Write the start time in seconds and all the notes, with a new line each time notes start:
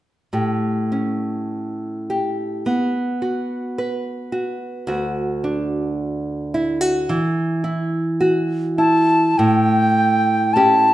0.33 A2 G4
0.92 C#4
2.10 G4
2.66 B3
3.22 F#4
3.78 B4
4.32 F#4
4.87 D2 F#4
5.44 D4
6.54 E4
6.81 F#4
7.09 E3
7.64 E4
8.21 F#4
8.78 E4 A5
9.38 A2 G5
10.54 C#4 E4 G4 A5